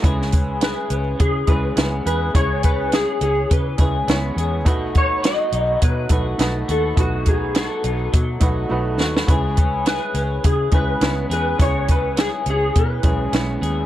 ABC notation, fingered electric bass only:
X:1
M:4/4
L:1/16
Q:"Swing 16ths" 1/4=104
K:C#m
V:1 name="Fingered electric bass" clef=bass
C,,4- C,, z C,,2 C,2 C,,2 C,,2 E,,2 | C,,4- C,, z C,,2 C,2 C,,2 C,,2 E,,2 | B,,,4- B,,, z B,,,2 B,,2 B,,,2 B,,,2 D,,2 | B,,,4- B,,, z B,,,2 B,,2 B,,,2 B,,,2 D,,2 |
C,,4- C,, z C,,2 C,2 C,,2 C,,2 E,,2 | C,,4- C,, z C,,2 B,,2 B,,,2 B,,,2 D,,2 |]